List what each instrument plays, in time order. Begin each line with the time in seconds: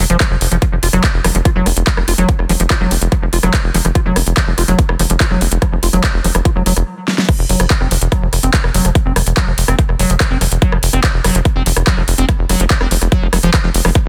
0.10 analog synth bass F1, acid bass F3, closed hi-hat
0.20 kick, clap, closed hi-hat
0.31 analog synth bass F1, acid bass F3
0.41 analog synth bass F1, open hi-hat
0.52 analog synth bass F1, acid bass F3, closed hi-hat
0.62 acid bass F3, kick, closed hi-hat
0.72 analog synth bass F1, acid bass F3
0.83 analog synth bass F1, acid bass F4, open hi-hat
0.93 analog synth bass F1, acid bass F#3, cross-stick, closed hi-hat
1.04 acid bass F4, kick, clap, closed hi-hat
1.14 analog synth bass F1
1.24 analog synth bass F1, acid bass F3, cross-stick, open hi-hat
1.35 analog synth bass F1, acid bass F3, closed hi-hat
1.45 acid bass F4, kick, closed hi-hat
1.56 analog synth bass F1, acid bass F#3
1.66 analog synth bass F1, acid bass F4, cross-stick, open hi-hat
1.77 analog synth bass F1, closed hi-hat
1.87 acid bass F3, kick, clap, closed hi-hat
1.97 analog synth bass F1, acid bass F3, cross-stick
2.08 analog synth bass F1, acid bass F4, open hi-hat
2.18 analog synth bass F1, acid bass F#3, closed hi-hat
2.29 acid bass F4, kick, closed hi-hat
2.39 analog synth bass F1, cross-stick
2.49 analog synth bass F1, acid bass F3, open hi-hat
2.60 analog synth bass F1, acid bass F3, closed hi-hat
2.70 acid bass F4, kick, cross-stick, clap, closed hi-hat
2.81 analog synth bass F1, acid bass F#3
2.91 analog synth bass F1, acid bass F4, open hi-hat
3.01 analog synth bass F1, closed hi-hat
3.12 acid bass F3, kick, cross-stick, closed hi-hat
3.22 analog synth bass F1, acid bass F3
3.33 analog synth bass F1, acid bass F4, open hi-hat
3.43 analog synth bass F1, acid bass F#3, cross-stick, closed hi-hat
3.54 acid bass F4, kick, clap, closed hi-hat
3.64 analog synth bass F1
3.74 analog synth bass F1, acid bass F3, open hi-hat
3.85 analog synth bass F1, acid bass F3, cross-stick, closed hi-hat
3.95 acid bass F4, kick, closed hi-hat
4.06 analog synth bass F1, acid bass F#3
4.16 analog synth bass F1, acid bass F4, cross-stick, open hi-hat
4.27 analog synth bass F1, closed hi-hat
4.37 acid bass F3, kick, clap, closed hi-hat
4.47 analog synth bass F1, acid bass F3
4.58 analog synth bass F1, acid bass F4, cross-stick, open hi-hat
4.68 analog synth bass F1, acid bass F#3, closed hi-hat
4.79 acid bass F4, kick, closed hi-hat
4.89 analog synth bass F1, cross-stick
4.99 analog synth bass F1, acid bass F3, open hi-hat
5.10 analog synth bass F1, acid bass F3, closed hi-hat
5.20 acid bass F4, kick, clap, closed hi-hat
5.31 analog synth bass F1, acid bass F#3, cross-stick
5.41 analog synth bass F1, acid bass F4, open hi-hat
5.52 analog synth bass F1, closed hi-hat
5.62 acid bass F3, kick, cross-stick, closed hi-hat
5.72 analog synth bass F1, acid bass F3
5.83 analog synth bass F1, acid bass F4, open hi-hat
5.93 analog synth bass F1, acid bass F#3, closed hi-hat
6.04 acid bass F4, kick, cross-stick, clap, closed hi-hat
6.14 analog synth bass F1
6.24 analog synth bass F1, acid bass F3, open hi-hat
6.35 analog synth bass F1, acid bass F3, cross-stick, closed hi-hat
6.45 acid bass F4, kick, closed hi-hat
6.56 analog synth bass F1, acid bass F#3
6.66 analog synth bass F1, acid bass F#3, open hi-hat
6.77 analog synth bass F1, cross-stick, closed hi-hat
7.08 snare
7.18 snare
7.29 acid bass F3, kick, cross-stick, closed hi-hat, crash
7.39 analog synth bass F1
7.49 analog synth bass F1, acid bass F#3, open hi-hat
7.60 analog synth bass F1, acid bass F3, cross-stick, closed hi-hat
7.70 kick, clap, closed hi-hat
7.81 analog synth bass F1, acid bass C4, cross-stick
7.91 analog synth bass F1, acid bass F3, open hi-hat
8.01 analog synth bass F1, closed hi-hat
8.12 acid bass F#3, kick, cross-stick, closed hi-hat
8.22 analog synth bass F1, acid bass F3
8.33 analog synth bass F1, cross-stick, open hi-hat
8.43 analog synth bass F1, acid bass C4, closed hi-hat
8.54 acid bass F3, kick, clap, closed hi-hat
8.64 analog synth bass F1, cross-stick
8.74 analog synth bass F1, acid bass F#3, open hi-hat
8.85 analog synth bass F1, acid bass F3, cross-stick, closed hi-hat
8.95 kick, closed hi-hat
9.06 analog synth bass F1, acid bass C4
9.16 analog synth bass F1, acid bass F3, cross-stick, open hi-hat
9.27 analog synth bass F1, closed hi-hat
9.37 acid bass F#3, kick, cross-stick, clap, closed hi-hat
9.47 analog synth bass F1, acid bass F3
9.58 analog synth bass F1, open hi-hat
9.68 analog synth bass F1, acid bass C4, cross-stick, closed hi-hat
9.79 acid bass F3, kick, closed hi-hat
9.89 analog synth bass F1, cross-stick
9.99 analog synth bass F1, acid bass F#3, open hi-hat
10.10 analog synth bass F1, acid bass F3, closed hi-hat
10.20 kick, cross-stick, clap, closed hi-hat
10.31 analog synth bass F1, acid bass C4
10.41 analog synth bass F1, acid bass F3, cross-stick, open hi-hat
10.51 analog synth bass F1, closed hi-hat
10.62 acid bass F#3, kick, closed hi-hat
10.72 analog synth bass F1, acid bass F3, cross-stick
10.83 analog synth bass F1, open hi-hat
10.93 analog synth bass F1, acid bass C4, cross-stick, closed hi-hat
11.04 acid bass F3, kick, clap, closed hi-hat
11.14 analog synth bass F1
11.24 analog synth bass F1, acid bass F#3, cross-stick, open hi-hat
11.35 analog synth bass F1, acid bass F3, closed hi-hat
11.45 kick, cross-stick, closed hi-hat
11.56 analog synth bass F1, acid bass C4
11.66 analog synth bass F1, acid bass F3, open hi-hat
11.77 analog synth bass F1, cross-stick, closed hi-hat
11.87 acid bass F#3, kick, clap, closed hi-hat
11.97 analog synth bass F1, acid bass F3, cross-stick
12.08 analog synth bass F1, open hi-hat
12.18 analog synth bass F1, acid bass C4, closed hi-hat
12.29 acid bass F3, kick, cross-stick, closed hi-hat
12.39 analog synth bass F1
12.49 analog synth bass F1, acid bass F#3, cross-stick, open hi-hat
12.60 analog synth bass F1, acid bass F3, closed hi-hat
12.70 kick, clap, closed hi-hat
12.81 analog synth bass F1, acid bass C4, cross-stick
12.91 analog synth bass F1, acid bass F3, open hi-hat
13.02 analog synth bass F1, cross-stick, closed hi-hat
13.12 acid bass F#3, kick, closed hi-hat
13.22 analog synth bass F1, acid bass F3
13.33 analog synth bass F1, acid bass F#3, cross-stick, open hi-hat
13.43 analog synth bass F1, acid bass F3, closed hi-hat
13.54 kick, cross-stick, clap, closed hi-hat
13.64 analog synth bass F1, acid bass F3
13.74 analog synth bass F1, open hi-hat
13.85 analog synth bass F1, acid bass F3, cross-stick, open hi-hat
13.95 acid bass F3, kick, cross-stick, closed hi-hat